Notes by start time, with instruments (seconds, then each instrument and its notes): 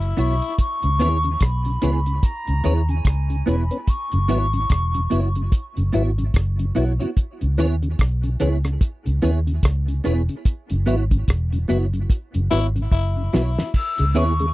Already playing: fingered electric bass F#1, tenor saxophone E4
0.01 closed hi-hat
0.17 fingered electric bass B1, clean electric guitar B3 E4 F#4 C#5, flute C#6, closed hi-hat
0.42 closed hi-hat
0.58 flute C#6, kick, closed hi-hat
0.83 fingered electric bass C#2, tonewheel organ C#3, closed hi-hat
0.99 fingered electric bass D#2, tonewheel organ E3 B3 C#4, clean electric guitar B3 E4 G#4 C#5, closed hi-hat
1.23 tonewheel organ C#3, closed hi-hat
1.40 fingered electric bass B1, flute B5, kick, cross-stick, closed hi-hat
1.65 tonewheel organ C#3, closed hi-hat
1.82 fingered electric bass C#2, tonewheel organ E3 B3 C#4, clean electric guitar B3 E4 G#4 C#5, closed hi-hat
2.06 tonewheel organ C#3, closed hi-hat
2.23 flute A#5, kick, closed hi-hat
2.47 fingered electric bass C#2, tonewheel organ C#3, closed hi-hat
2.64 fingered electric bass D#2, tonewheel organ E3 B3 C#4, clean electric guitar B3 E4 G#4 C#5, closed hi-hat
2.89 tonewheel organ C#3, flute G#5, closed hi-hat
3.05 fingered electric bass C#2, kick, cross-stick, closed hi-hat
3.30 tonewheel organ C#3, closed hi-hat
3.46 fingered electric bass E1, tonewheel organ E3 B3 C#4, clean electric guitar B3 E4 G#4 C#5, flute B5, closed hi-hat
3.71 tonewheel organ B3 C#4, closed hi-hat
3.87 flute C#6, kick, closed hi-hat
4.12 fingered electric bass F#1, tonewheel organ F#2 C#3, closed hi-hat
4.28 fingered electric bass G#1, tonewheel organ F#3 B3 E4, clean electric guitar B3 E4 F#4 C#5, closed hi-hat
4.53 tonewheel organ F#2 C#3, closed hi-hat
4.70 fingered electric bass E1, kick, cross-stick, closed hi-hat
4.94 tonewheel organ F#2 C#3, closed hi-hat
5.10 fingered electric bass F#1, tonewheel organ F#3 B3 E4, clean electric guitar B3 E4 F#4 C#5, closed hi-hat
5.35 tonewheel organ F#2 C#3, closed hi-hat
5.52 kick, closed hi-hat
5.77 fingered electric bass F#1, tonewheel organ F#2 C#3, closed hi-hat
5.93 fingered electric bass G#1, tonewheel organ F#3 B3 E4, clean electric guitar B3 E4 F#4 C#5, closed hi-hat
6.18 tonewheel organ F#2 C#3, closed hi-hat
6.34 fingered electric bass F#1, kick, cross-stick, closed hi-hat
6.59 tonewheel organ F#2 C#3, closed hi-hat
6.75 fingered electric bass B1, tonewheel organ F#3 B3 E4, clean electric guitar B3 E4 F#4 C#5, closed hi-hat
6.99 tonewheel organ F#2 C#3, clean electric guitar B3 E4 F#4 C#5, closed hi-hat
7.17 kick, closed hi-hat
7.41 fingered electric bass C#2, tonewheel organ C#3, closed hi-hat
7.58 fingered electric bass D#2, tonewheel organ E3 B3 C#4, clean electric guitar B3 E4 G#4 C#5, closed hi-hat
7.82 tonewheel organ C#3, closed hi-hat
7.99 fingered electric bass B1, kick, cross-stick, closed hi-hat
8.23 tonewheel organ C#3, closed hi-hat
8.40 fingered electric bass C#2, tonewheel organ E3 B3 C#4, clean electric guitar B3 E4 G#4 C#5, closed hi-hat
8.64 tonewheel organ C#3, cross-stick, closed hi-hat
8.81 kick, closed hi-hat
9.06 fingered electric bass C#2, tonewheel organ C#3, closed hi-hat
9.22 fingered electric bass D#2, tonewheel organ E3 B3 C#4, clean electric guitar B3 E4 G#4 C#5, closed hi-hat
9.47 tonewheel organ C#3, closed hi-hat
9.63 fingered electric bass C#2, kick, cross-stick, closed hi-hat
9.88 tonewheel organ C#3, closed hi-hat
10.04 fingered electric bass E1, tonewheel organ E3 B3 C#4, clean electric guitar B3 E4 G#4 C#5, closed hi-hat
10.29 tonewheel organ C#3, closed hi-hat
10.45 kick, closed hi-hat
10.70 fingered electric bass F#1, tonewheel organ F#2 C#3, closed hi-hat
10.86 fingered electric bass G#1, tonewheel organ F#3 B3 E4, clean electric guitar B3 E4 F#4 C#5, closed hi-hat
11.11 tonewheel organ F#2 C#3, kick, closed hi-hat
11.28 fingered electric bass E1, kick, cross-stick, closed hi-hat
11.53 tonewheel organ F#2 C#3, closed hi-hat
11.68 fingered electric bass F#1, tonewheel organ F#3 B3 E4, clean electric guitar B3 E4 F#4 C#5, closed hi-hat
11.93 tonewheel organ F#2 C#3, closed hi-hat
12.10 kick, closed hi-hat
12.34 fingered electric bass F#1, tonewheel organ F#2 C#3, closed hi-hat
12.51 fingered electric bass G#1, tonewheel organ F#3 B3 E4, clean electric guitar B3 E4 F#4 C#5, tenor saxophone E4, closed hi-hat
12.75 tonewheel organ F#2 C#3, closed hi-hat
12.92 fingered electric bass F#1, tenor saxophone E4, kick
13.17 tonewheel organ F#2 C#3
13.33 fingered electric bass B1, tonewheel organ F#3 B3 E4, clean electric guitar B3 E4 F#4 C#5, snare
13.58 tonewheel organ F#2 C#3, snare
13.74 flute E6, kick, crash
13.98 fingered electric bass C#2, tonewheel organ C#3 G#3, closed hi-hat
14.14 fingered electric bass D#2, clean electric guitar B3 E4 G#4 C#5, tonewheel organ B3 C#4 E4, flute C#6, closed hi-hat
14.40 tonewheel organ C#3 G#3, closed hi-hat